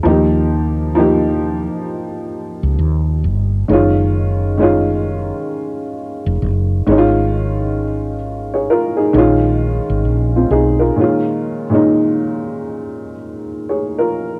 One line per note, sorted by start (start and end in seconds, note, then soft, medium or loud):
0.03 1.67 D#2 loud
0.03 0.88 F3 medium
0.03 0.89 A#3 medium
0.03 0.90 D#4 medium
0.08 0.91 G4 medium
0.95 2.64 F3 medium
0.95 2.65 A#3 medium
0.95 2.66 D#4 medium
1.00 2.67 G4 medium
2.63 2.76 C#2 medium
2.79 3.26 D#2 medium
3.24 3.63 G1 medium
3.68 5.31 F#1 medium
3.68 4.53 D#3 medium
3.68 4.54 G#3 medium
3.68 4.54 C#4 medium
3.73 4.55 F4 medium
4.58 6.27 D#3 medium
4.58 6.28 G#3 medium
4.58 6.29 C#4 medium
4.62 6.30 F4 medium
6.26 6.39 F1 medium
6.42 6.81 F#1 medium
6.87 8.68 G#1 medium
6.87 8.13 D#3 medium
6.87 8.14 G#3 medium
6.87 8.15 C#4 medium
6.92 6.98 D#4 medium
6.98 7.83 F4 loud
8.54 8.69 G#4 soft
8.54 8.68 C#5 medium
8.70 8.98 F4 medium
8.70 8.98 A#4 medium
8.97 9.41 D#4 soft
8.97 9.41 G#4 medium
9.13 9.79 A#1 medium
9.13 10.82 D#3 medium
9.13 10.83 G#3 medium
9.13 10.06 C#4 medium
9.18 10.07 F4 medium
9.90 10.03 G#1 medium
10.05 10.44 A#1 medium
10.36 10.51 C4 medium
10.36 10.50 F4 medium
10.51 10.89 B1 medium
10.51 10.80 D#4 medium
10.51 10.79 G#4 medium
10.79 10.99 F4 medium
10.79 11.23 A#4 medium
10.96 11.62 A#2 medium
10.96 11.62 D#3 medium
10.96 11.63 G#3 medium
10.96 11.64 C#4 medium
11.01 11.64 F4 medium
11.70 13.11 A#2 medium
11.70 13.11 D#3 medium
11.70 13.12 G#3 medium
11.70 13.13 C#4 medium
11.74 13.13 D#4 medium
13.69 13.97 G#4 soft
13.69 13.97 C#5 medium
13.98 14.39 F4 soft
13.98 14.39 A#4 medium